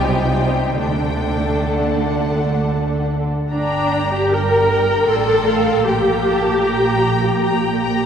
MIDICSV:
0, 0, Header, 1, 6, 480
1, 0, Start_track
1, 0, Key_signature, -2, "minor"
1, 0, Tempo, 916031
1, 425, Time_signature, 3, 2, 24, 8
1, 914, Tempo, 887574
1, 1874, Tempo, 774194
1, 4688, End_track
2, 0, Start_track
2, 0, Title_t, "Violin section"
2, 0, Program_c, 0, 48
2, 0, Note_on_c, 0, 67, 75
2, 0, Note_on_c, 0, 72, 41
2, 403, Note_off_c, 0, 72, 0
2, 404, Note_off_c, 0, 67, 0
2, 427, Note_on_c, 0, 62, 41
2, 428, Note_on_c, 0, 69, 41
2, 1738, Note_off_c, 0, 62, 0
2, 1739, Note_off_c, 0, 69, 0
2, 1870, Note_on_c, 0, 79, 41
2, 1873, Note_on_c, 0, 82, 46
2, 2340, Note_off_c, 0, 82, 0
2, 2359, Note_off_c, 0, 79, 0
2, 2366, Note_on_c, 0, 79, 51
2, 2845, Note_on_c, 0, 74, 42
2, 3085, Note_off_c, 0, 74, 0
2, 3089, Note_on_c, 0, 77, 48
2, 3321, Note_off_c, 0, 79, 0
2, 3326, Note_off_c, 0, 77, 0
2, 3328, Note_on_c, 0, 79, 44
2, 3329, Note_off_c, 0, 79, 0
2, 3329, Note_on_c, 0, 79, 44
2, 3564, Note_on_c, 0, 81, 46
2, 3797, Note_off_c, 0, 79, 0
2, 3803, Note_off_c, 0, 81, 0
2, 3809, Note_on_c, 0, 79, 50
2, 3809, Note_on_c, 0, 82, 48
2, 4267, Note_off_c, 0, 79, 0
2, 4277, Note_off_c, 0, 82, 0
2, 4284, Note_on_c, 0, 82, 49
2, 4285, Note_on_c, 0, 79, 46
2, 4511, Note_off_c, 0, 82, 0
2, 4518, Note_on_c, 0, 82, 47
2, 4688, Note_off_c, 0, 79, 0
2, 4688, Note_off_c, 0, 82, 0
2, 4688, End_track
3, 0, Start_track
3, 0, Title_t, "Violin section"
3, 0, Program_c, 1, 48
3, 0, Note_on_c, 1, 79, 54
3, 413, Note_off_c, 1, 79, 0
3, 419, Note_on_c, 1, 79, 55
3, 902, Note_off_c, 1, 79, 0
3, 911, Note_on_c, 1, 78, 42
3, 1638, Note_off_c, 1, 78, 0
3, 1873, Note_on_c, 1, 82, 40
3, 2339, Note_off_c, 1, 82, 0
3, 2364, Note_on_c, 1, 82, 47
3, 2832, Note_off_c, 1, 82, 0
3, 2841, Note_on_c, 1, 84, 42
3, 3317, Note_off_c, 1, 84, 0
3, 3329, Note_on_c, 1, 82, 41
3, 3807, Note_off_c, 1, 82, 0
3, 3810, Note_on_c, 1, 79, 45
3, 4271, Note_off_c, 1, 79, 0
3, 4279, Note_on_c, 1, 79, 45
3, 4688, Note_off_c, 1, 79, 0
3, 4688, End_track
4, 0, Start_track
4, 0, Title_t, "Viola section"
4, 0, Program_c, 2, 48
4, 0, Note_on_c, 2, 55, 53
4, 0, Note_on_c, 2, 63, 44
4, 405, Note_off_c, 2, 55, 0
4, 406, Note_off_c, 2, 63, 0
4, 423, Note_on_c, 2, 62, 38
4, 424, Note_on_c, 2, 57, 41
4, 1736, Note_off_c, 2, 62, 0
4, 1737, Note_off_c, 2, 57, 0
4, 1870, Note_on_c, 2, 62, 60
4, 2218, Note_off_c, 2, 62, 0
4, 2255, Note_on_c, 2, 67, 57
4, 2369, Note_on_c, 2, 70, 65
4, 2370, Note_off_c, 2, 67, 0
4, 2843, Note_off_c, 2, 70, 0
4, 2843, Note_on_c, 2, 69, 63
4, 3326, Note_on_c, 2, 67, 66
4, 3328, Note_off_c, 2, 69, 0
4, 4514, Note_off_c, 2, 67, 0
4, 4688, End_track
5, 0, Start_track
5, 0, Title_t, "Cello section"
5, 0, Program_c, 3, 48
5, 0, Note_on_c, 3, 48, 51
5, 425, Note_off_c, 3, 48, 0
5, 428, Note_on_c, 3, 50, 44
5, 1739, Note_off_c, 3, 50, 0
5, 1872, Note_on_c, 3, 43, 46
5, 2815, Note_off_c, 3, 43, 0
5, 2844, Note_on_c, 3, 45, 46
5, 3319, Note_off_c, 3, 45, 0
5, 3327, Note_on_c, 3, 46, 52
5, 4688, Note_off_c, 3, 46, 0
5, 4688, End_track
6, 0, Start_track
6, 0, Title_t, "Double bass section"
6, 0, Program_c, 4, 48
6, 0, Note_on_c, 4, 36, 46
6, 424, Note_on_c, 4, 38, 39
6, 425, Note_off_c, 4, 36, 0
6, 1737, Note_off_c, 4, 38, 0
6, 1874, Note_on_c, 4, 31, 46
6, 2816, Note_off_c, 4, 31, 0
6, 2841, Note_on_c, 4, 33, 43
6, 3317, Note_off_c, 4, 33, 0
6, 3328, Note_on_c, 4, 34, 50
6, 4688, Note_off_c, 4, 34, 0
6, 4688, End_track
0, 0, End_of_file